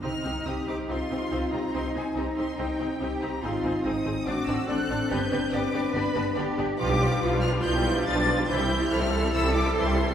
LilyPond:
<<
  \new Staff \with { instrumentName = "Violin section" } { \time 4/4 \key c \minor \tempo 4 = 142 f'''4 ees'''8 d'''8 c'''4. bes''8 | c'''8 aes''8 bes''8 c'''8 g''4. bes''8 | c'''4 ees'''4 d'''8 e'''8 fis'''4 | g'''4 d'''4 b''4 r4 |
\key c \major d'''4. f'''8 g'''4 a'''4 | g'''4 f'''4 e'''8 d'''8 c'''4 | }
  \new Staff \with { instrumentName = "Violin section" } { \time 4/4 \key c \minor <g' c''>8 <g' c''>8 <g' c''>8 <g' c''>8 <g' c''>8 <g' c''>8 <g' c''>8 <g' c''>8 | <g' c''>8 <g' c''>8 <g' c''>8 <g' c''>8 <g' c''>8 <g' c''>8 <g' c''>8 <g' c''>8 | <aes' c''>8 <aes' c''>8 <aes' c''>8 <aes' c''>8 <d' d''>8 <d' d''>8 <d' d''>8 <d' d''>8 | <g' d''>8 <g' d''>8 <g' d''>8 <g' d''>8 <g' d''>8 <g' d''>8 <g' d''>8 <g' d''>8 |
\key c \major <b' d''>16 <g' b'>16 <b' d''>16 <g' b'>16 <b' d''>16 <g' b'>16 <b' d''>16 <g' b'>16 <b' d''>16 <g' b'>16 <b' d''>16 <g' b'>16 <b' d''>16 <g' b'>16 <b' d''>16 <g' b'>16 | <e' c''>16 <g' e''>16 <e' c''>16 <g' e''>16 <e' c''>16 <g' e''>16 <e' c''>16 <g' e''>16 <e' c''>16 <g' e''>16 <e' c''>16 <g' e''>16 <e' c''>16 <g' e''>16 <e' c''>16 <g' e''>16 | }
  \new Staff \with { instrumentName = "Cello section" } { \time 4/4 \key c \minor ees'4 g'4 f'2 | ees'4 ees'2 g'4 | f'4 ees'4 fis'4 a'4 | b'4 b'2 g'4 |
\key c \major g'4 f'4 e'4 d'4 | e'4 a'2. | }
  \new Staff \with { instrumentName = "French horn section" } { \time 4/4 \key c \minor << { ees'1~ | ees'1 | ees'2 d'2~ | d'1 |
\key c \major f'1 | e'1 | } \\ { c'1~ | c'1 | c'1~ | c'2 b2 |
g1~ | g1 | } >> }
  \new Staff \with { instrumentName = "Viola section" } { \time 4/4 \key c \minor <c' ees'>8 <c' ees'>8 <c' ees'>8 <c' ees'>8 <c' ees'>8 <c' ees'>8 <c' ees'>8 <c' ees'>8 | <c' ees'>8 <c' ees'>8 <c' ees'>8 <c' ees'>8 <c' ees'>8 <c' ees'>8 <c' ees'>8 <c' ees'>8 | <c' ees'>8 <c' ees'>8 <c' ees'>8 <c' ees'>8 <c' d'>8 <c' d'>8 <c' d'>8 <c' d'>8 | <b d'>8 <b d'>8 <b d'>8 <b d'>8 <b d'>8 <b d'>8 <b d'>8 <b d'>8 |
\key c \major <f f'>16 <g d'>16 <f f'>16 <g d'>16 <f f'>16 <g d'>16 <f f'>16 <g d'>16 <f f'>16 <g d'>16 <f f'>16 <g d'>16 <f f'>16 <g d'>16 <f f'>16 <g d'>16 | <e e'>16 <g c'>16 <e e'>16 <g c'>16 <e e'>16 <g c'>16 <e e'>16 <g c'>16 <e e'>16 <g c'>16 <e e'>16 <g c'>16 <e e'>16 <g c'>16 <e e'>16 <g c'>16 | }
  \new Staff \with { instrumentName = "Double bass section" } { \clef bass \time 4/4 \key c \minor c,8 c,8 c,8 c,8 c,8 c,8 c,8 c,8 | c,8 c,8 c,8 c,8 c,8 c,8 c,8 c,8 | aes,,8 aes,,8 aes,,8 aes,,8 a,,8 a,,8 a,,8 a,,8 | g,,8 g,,8 g,,8 g,,8 g,,8 g,,8 g,,8 g,,8 |
\key c \major b,,4 b,,4 b,,4 b,,4 | c,4 c,4 c,4 c,4 | }
>>